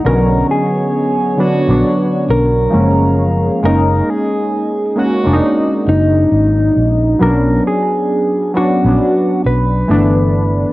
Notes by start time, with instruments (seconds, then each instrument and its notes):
Already playing: ambient pad F#5
0.04 fingered electric bass B1, synth keys D3 F#3 B3, ambient pad B3 C#5 C#6, clean electric guitar A#4
0.08 synth keys C#4
0.51 clean electric guitar G#4
1.37 synth keys D3 F#3 B3 D4, clean electric guitar F#4
1.67 fingered electric bass A#1, synth keys D3 F#3 B3 D4
2.29 fingered electric bass B1, clean electric guitar A#4
2.70 synth keys F3 G#3 A#3 C#4, ambient pad G#4 F5 A#5
2.74 fingered electric bass F#1
3.63 fingered electric bass F#1, synth keys G#3 A#3 C#4 D#4, clean electric guitar A#4
4.10 clean electric guitar G#4
4.96 synth keys G#3 A#3 C#4 F#4, clean electric guitar F#4
5.24 fingered electric bass F1, synth keys G#3 A#3 C#4 D4
5.33 synth keys D#4
5.87 fingered electric bass F#1, clean electric guitar D#4
6.32 fingered electric bass G#1
6.77 fingered electric bass A#1
7.19 fingered electric bass B1, synth keys F#3 B3 C#4 D4, clean electric guitar A#4
7.67 clean electric guitar G#4
8.54 synth keys F#3 B3 C#4 D4, clean electric guitar F#4
8.84 fingered electric bass A#1, synth keys F#3 B3 C#4 D4
9.45 fingered electric bass B1, clean electric guitar B4
9.88 fingered electric bass G1, synth keys E3 A3 B3 D4